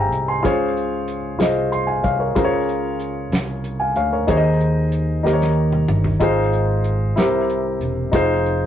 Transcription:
Already playing: G1 G#2 G4 G#4 C5 D#5 E5 F5 G5 G#5 A#5
0.12 C2, closed hi-hat
0.28 G#5 C6
0.43 C#2 C#3 F4 G#4 C5 C#5, kick, closed hi-hat
0.77 closed hi-hat
1.08 closed hi-hat
1.39 C2 F4 G#4 C5 D#5, snare, closed hi-hat
1.72 C6, closed hi-hat
1.87 F5 G#5
2.04 C2 C#5 F5, kick, closed hi-hat
2.20 A#4 C#5
2.35 C#2 C#3 F4 G#4 A#4 C5, kick, closed hi-hat
2.45 C#5
2.69 closed hi-hat
3.00 closed hi-hat
3.32 C2, snare, closed hi-hat
3.64 closed hi-hat
3.80 F5 G#5
3.96 D2 C#5 F5, closed hi-hat
4.13 A#4 C#5
4.27 D#2 D#3 D#4 G#4 C5 C#5, kick, closed hi-hat
4.37 D#5
4.61 closed hi-hat
4.92 closed hi-hat
5.23 D#2 D#3 D#4 G4 A#4 C5, snare
5.33 C#5
5.41 snare
5.72 mid tom
5.88 G1, mid tom
6.04 floor tom
6.20 G#1 G#2 D#4 F4 G#4 C5, kick, closed hi-hat
6.53 closed hi-hat
6.84 closed hi-hat
7.16 C2 C3 E4 G4 A#4, snare, closed hi-hat
7.20 C5
7.50 closed hi-hat
7.80 E1, closed hi-hat
8.12 F1 D#4 F4 G#4 C5, kick, closed hi-hat
8.46 closed hi-hat

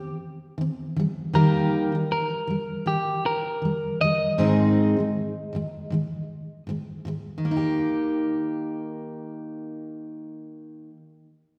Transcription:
Already playing: D#3 C4 G4
0.58 D#3 C4
0.96 D#3 G3
1.33 D#3 G3 A#3 D#4 G4 A#4
1.92 D#3 G3
2.12 A#4
2.47 D#3 G3
2.86 D#3 G3 G4
3.26 A#4
3.62 D#3 G3
4.01 D#3 G3 D#5
4.38 G#2 D#3 G#3 C4 D#4 G#4
4.97 G#2 D#3 G#3
5.53 G#2 D#3 G#3
5.90 G#2 D#3 G#3
6.67 G#2 D#3 G#3
7.05 G#2 D#3 G#3
7.38 D#3
7.45 A#3
7.51 D#4
7.57 G4

